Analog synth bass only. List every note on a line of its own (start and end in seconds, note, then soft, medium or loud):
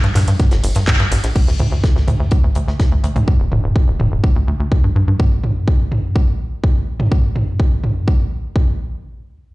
0.04 0.13 G2 medium
0.16 0.25 G2 loud
0.28 0.37 G2 medium
0.52 0.61 G1 medium
0.64 0.73 G1 loud
0.76 0.85 G2 medium
1.00 1.09 G2 medium
1.12 1.21 A1 loud
1.24 1.33 A#1 medium
1.48 1.57 D2 medium
1.60 1.69 D2 loud
1.72 1.81 D2 medium
1.96 2.05 D2 medium
2.08 2.17 D2 loud
2.20 2.29 D2 medium
2.44 2.53 D2 medium
2.56 2.65 D2 loud
2.68 2.77 D2 medium
2.92 3.01 D2 medium
3.04 3.13 D2 loud
3.16 3.25 D2 medium
3.40 3.49 D1 medium
3.52 3.61 D1 loud
3.64 3.73 D1 medium
3.88 3.97 D1 medium
4.00 4.09 D1 loud
4.12 4.21 D1 medium
4.36 4.45 D2 medium
4.48 4.57 D2 loud
4.60 4.69 D2 medium
4.84 4.93 G2 medium
4.96 5.05 G2 loud
5.08 5.17 G2 medium